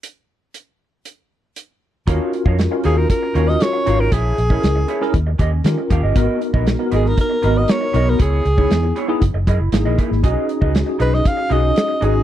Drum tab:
HH |x---x---x---x---|x-x-x-x-x-x-x-x-|x-x-x-x-x-x-x-x-|x-x-x-x-x-x-x-x-|
SD |----------------|----o------oo---|----o--o----o---|----o--o----o---|
BD |----------------|o--o----o-------|o--o----o-o---o-|o--o----o-------|

HH |x-x-x-x-x-x-x-x-|x-x-x-x-x-x-x-x-|
SD |----o-------o--o|----o--o----o---|
BD |o--o----o-o---o-|o--o----o-------|